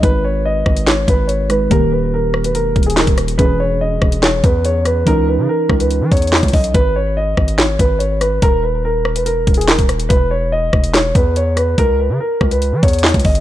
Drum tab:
HH |x-----------------------------------------x-----x-----------x-----------x-----------x-----------|x-----------------------------------------x-----x-----------x---x---x---x-----x-----x-----x-----|x-----------------------------------------x-----x-----------x-----------x-----------x-----------|x-----------------------------------------x-----x-----------x--x--x--x--x--x--x--x--o-----x-----|
CP |------------------------------------------------x-----------------------------------------------|------------------------------------------------------------------------x-----------------------|------------------------------------------------x-----------------------------------------------|------------------------------------------------------------------------x-----------------------|
SD |------------------------------------r-----------o-----------------------------------r-----------|------------------------------------r-----------------------------------o-----------r-----------|------------------------------------r-----------o-----------------------------------r-----------|------------------------------------r-----------------------------------o-----------------------|
BD |o-----------------------------------o-----------------------o-----------------------------------|o-----------------------------------------------------------o-----------------o-----------------|o-----------------------------------o-----------------------o-----------------------------------|o-----------------------------------o-----------------------o-----------------o-----o-----------|

HH |x-----------------------------------------x-----x-----------x-----------x-----------x-----------|x-----------------------------------------x-----x-----------x---x---x---x-----x-----x-----x-----|x-----------------------------------------x-----x-----------x-----------x-----------x-----------|x-----------------------------------------x-----x-----------x--x--x--x--x--x--x--x--o-----x-----|
CP |------------------------------------------------x-----------------------------------------------|------------------------------------------------------------------------x-----------------------|------------------------------------------------x-----------------------------------------------|------------------------------------------------------------------------x-----------------------|
SD |------------------------------------r-----------o-----------------------------------r-----------|------------------------------------r-----------------------------------o-----------r-----------|------------------------------------r-----------o-----------------------------------r-----------|------------------------------------r-----------------------------------o-----------------------|
BD |o-----------------------------------o-----------------------o-----------------------------------|o-----------------------------------------------------------o-----------------o-----------------|o-----------------------------------o-----------------------o-----------------------------------|o-----------------------------------o-----------------------o-----------------o-----o-----------|